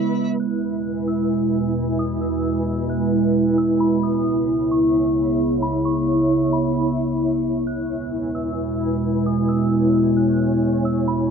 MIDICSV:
0, 0, Header, 1, 4, 480
1, 0, Start_track
1, 0, Tempo, 454545
1, 418, Time_signature, 4, 2, 24, 8
1, 11939, End_track
2, 0, Start_track
2, 0, Title_t, "Synth bell"
2, 0, Program_c, 0, 98
2, 420, Note_on_c, 0, 90, 89
2, 1097, Note_off_c, 0, 90, 0
2, 1136, Note_on_c, 0, 88, 85
2, 2055, Note_off_c, 0, 88, 0
2, 2102, Note_on_c, 0, 87, 85
2, 2328, Note_off_c, 0, 87, 0
2, 2335, Note_on_c, 0, 88, 92
2, 3014, Note_off_c, 0, 88, 0
2, 3057, Note_on_c, 0, 90, 79
2, 3735, Note_off_c, 0, 90, 0
2, 3778, Note_on_c, 0, 88, 81
2, 4006, Note_off_c, 0, 88, 0
2, 4016, Note_on_c, 0, 83, 71
2, 4245, Note_off_c, 0, 83, 0
2, 4258, Note_on_c, 0, 87, 96
2, 4936, Note_off_c, 0, 87, 0
2, 4978, Note_on_c, 0, 85, 79
2, 5896, Note_off_c, 0, 85, 0
2, 5939, Note_on_c, 0, 83, 87
2, 6166, Note_off_c, 0, 83, 0
2, 6180, Note_on_c, 0, 85, 95
2, 6857, Note_off_c, 0, 85, 0
2, 6893, Note_on_c, 0, 83, 72
2, 7573, Note_off_c, 0, 83, 0
2, 8098, Note_on_c, 0, 90, 88
2, 8776, Note_off_c, 0, 90, 0
2, 8816, Note_on_c, 0, 88, 85
2, 9734, Note_off_c, 0, 88, 0
2, 9782, Note_on_c, 0, 87, 82
2, 10008, Note_off_c, 0, 87, 0
2, 10015, Note_on_c, 0, 88, 93
2, 10694, Note_off_c, 0, 88, 0
2, 10735, Note_on_c, 0, 90, 80
2, 11414, Note_off_c, 0, 90, 0
2, 11458, Note_on_c, 0, 88, 81
2, 11686, Note_off_c, 0, 88, 0
2, 11697, Note_on_c, 0, 83, 75
2, 11925, Note_off_c, 0, 83, 0
2, 11939, End_track
3, 0, Start_track
3, 0, Title_t, "Synth texture"
3, 0, Program_c, 1, 99
3, 0, Note_on_c, 1, 64, 81
3, 0, Note_on_c, 1, 71, 73
3, 0, Note_on_c, 1, 83, 85
3, 379, Note_off_c, 1, 64, 0
3, 379, Note_off_c, 1, 83, 0
3, 399, Note_off_c, 1, 71, 0
3, 419, Note_on_c, 1, 64, 77
3, 419, Note_on_c, 1, 71, 73
3, 419, Note_on_c, 1, 80, 85
3, 4220, Note_off_c, 1, 71, 0
3, 4220, Note_off_c, 1, 80, 0
3, 4258, Note_on_c, 1, 83, 85
3, 4259, Note_on_c, 1, 73, 75
3, 6159, Note_off_c, 1, 83, 0
3, 6178, Note_on_c, 1, 85, 90
3, 8060, Note_off_c, 1, 73, 0
3, 8078, Note_off_c, 1, 85, 0
3, 8098, Note_on_c, 1, 71, 71
3, 8099, Note_on_c, 1, 80, 87
3, 9999, Note_off_c, 1, 71, 0
3, 10017, Note_on_c, 1, 73, 70
3, 11896, Note_off_c, 1, 64, 0
3, 11900, Note_off_c, 1, 80, 0
3, 11939, Note_off_c, 1, 73, 0
3, 11939, End_track
4, 0, Start_track
4, 0, Title_t, "Ambient pad"
4, 0, Program_c, 2, 92
4, 0, Note_on_c, 2, 49, 80
4, 0, Note_on_c, 2, 56, 78
4, 0, Note_on_c, 2, 59, 78
4, 0, Note_on_c, 2, 64, 93
4, 380, Note_off_c, 2, 49, 0
4, 380, Note_off_c, 2, 56, 0
4, 380, Note_off_c, 2, 59, 0
4, 380, Note_off_c, 2, 64, 0
4, 419, Note_on_c, 2, 40, 79
4, 419, Note_on_c, 2, 56, 73
4, 419, Note_on_c, 2, 64, 90
4, 420, Note_on_c, 2, 47, 70
4, 4220, Note_off_c, 2, 40, 0
4, 4220, Note_off_c, 2, 47, 0
4, 4220, Note_off_c, 2, 56, 0
4, 4257, Note_on_c, 2, 37, 79
4, 4257, Note_on_c, 2, 49, 74
4, 4258, Note_on_c, 2, 59, 70
4, 8059, Note_off_c, 2, 37, 0
4, 8059, Note_off_c, 2, 49, 0
4, 8059, Note_off_c, 2, 59, 0
4, 8098, Note_on_c, 2, 40, 80
4, 8098, Note_on_c, 2, 47, 74
4, 8098, Note_on_c, 2, 56, 72
4, 11896, Note_off_c, 2, 64, 0
4, 11899, Note_off_c, 2, 40, 0
4, 11899, Note_off_c, 2, 47, 0
4, 11899, Note_off_c, 2, 56, 0
4, 11939, End_track
0, 0, End_of_file